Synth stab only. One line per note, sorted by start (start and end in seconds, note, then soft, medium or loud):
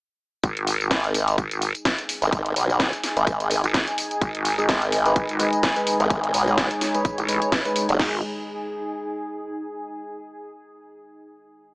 4.58 4.80 G#3 loud
4.58 4.80 D#4 medium
4.58 4.80 G#4 loud
5.06 5.27 G#3 medium
5.06 5.27 D#4 medium
5.06 5.27 B4 medium
5.40 5.73 G#3 medium
5.40 5.73 D#4 medium
5.40 5.73 B4 medium
5.76 5.98 G#3 loud
5.76 5.98 D#4 medium
5.76 5.98 B4 loud
6.47 6.69 G#3 loud
6.47 6.69 D#4 medium
6.47 6.69 G#4 loud
6.95 7.16 G#3 medium
6.95 7.16 D#4 medium
6.95 7.16 B4 medium
7.29 7.62 G#3 medium
7.29 7.62 D#4 medium
7.29 7.62 B4 medium
7.65 7.87 G#3 medium
7.65 7.87 D#4 medium
7.65 7.87 B4 loud
8.00 8.18 G#3 medium
8.00 8.18 D#4 medium
8.00 8.18 G#4 loud